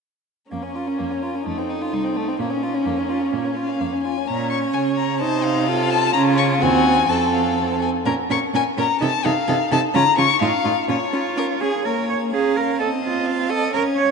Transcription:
0.51 F2 A#3 C#4 A#4
0.63 C#4
0.76 F4
0.87 C#4
0.99 F2 A#3
1.11 C#4
1.23 F4
1.35 C#4
1.46 F2 A3 D#4 A4
1.58 C4
1.70 D#4
1.82 F4
1.93 C2 D#4
2.04 C4
2.16 A3
2.28 C4
2.38 A#2 A#3 C#4 A#4
2.50 C#4
2.63 F4
2.74 C#4
2.86 F2 A#3
2.98 C#4
3.10 F4
3.21 C#4
3.33 A#2 A#3
3.45 C#4
3.55 F4 F5
3.68 C#4
3.80 F2 A#3
3.93 C#4
4.03 F4 G#5
4.18 C#4
4.27 A#2 C#4 C#5 A#5
4.50 C#6
4.73 C#3 G#5
4.97 A#5
5.20 C3 D#4 C5 A5
5.44 F5
5.68 F4 A4
5.90 A5
6.13 C#3 C#4 F4 A#5
6.38 C#6
6.61 D#2 C4 F#4 G#5
7.09 F2 C4 A4 A5
7.33 F5
7.82 G#5
8.06 A#2 C#4 A#4 A#5
8.30 A#2 C#4 A#4 C#6
8.54 A#2 C#4 A#4 G#5
8.77 A#2 C#4 A#4 A#5
9.01 C3 D#4 A4 A5
9.24 C3 D#4 A4 F5
9.48 C3 D#4 A4
9.71 C3 D#4 A4 A5
9.94 C#3 C#4 F4 A#5
10.17 C#3 C#4 F4 C#6
10.41 A2 D#4 F4 F5
10.64 A2 D#4 F4
10.88 A#2 C#4 F4 C#5
11.12 C#4 F4
11.36 C#4 A#4
11.61 C#4 G#4
11.85 A#3 A#4 C#5 A#5
12.09 C#5
12.32 C#4 G#4 F5 A#5
12.56 A#4
12.79 C4 A4 D#5 A5
13.03 F4
13.26 F5
13.49 A4 D#5
13.73 C#4 A#4 C#5 F5
13.97 C#5

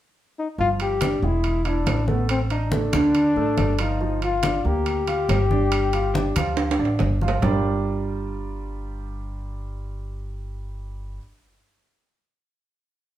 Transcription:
0.39 D#4
0.58 G1 F3 F4, high conga
0.80 G4, high conga, high timbale
1.01 D4 D5, high conga, high timbale, low timbale
1.22 E1 G#3 E4 G#4, high conga
1.44 high conga, high timbale
1.65 D4 E4 E5, high conga, high timbale
1.86 A1, high conga, high timbale, low timbale
2.08 A3 B3 A4, high conga
2.29 C4, high conga, high timbale
2.50 D4 D#4 D#5, high conga, high timbale
2.72 A3 A4, high conga, low timbale
2.93 D2 D3 D4, high conga, high timbale
3.15 high conga, high timbale
3.36 A1 A3 A4, high conga
3.57 G1, high conga, high timbale, low timbale
3.79 F3 D#4 F4, high timbale
4.01 F3 F4, high conga
4.22 F4, high conga, high timbale
4.43 D4 D5, high conga, high timbale, low timbale
4.65 D2 A#3 G4 A#4, high conga
4.86 high conga, high timbale
5.07 F4 F5, high conga, high timbale
5.29 G1, high conga, high timbale, low timbale
5.51 D4 D5, high conga
5.72 high conga, high timbale
5.93 F4 F5, high conga, high timbale
6.14 D4 D5, high conga, low timbale
6.36 D2 F3 F4, high conga, high timbale
6.57 high conga, high timbale
6.71 high timbale
6.79 A1 D4 D5, high conga
6.85 high timbale
6.99 G1, high conga, low timbale
7.21 F3 F4, high conga
7.28 low timbale
7.42 G1 G3 D4 F4 G4 A#4 D5, low conga, low timbale

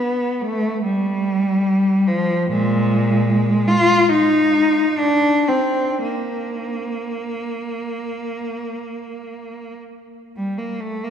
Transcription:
Already playing: B3
0.41 A3
0.83 G3
2.08 F3
2.49 A#2 G#3
3.68 F4
4.09 D#4
4.98 D4
5.48 C4
6.02 A#3
10.37 G3
10.58 A#3
10.80 A3
11.04 A#3

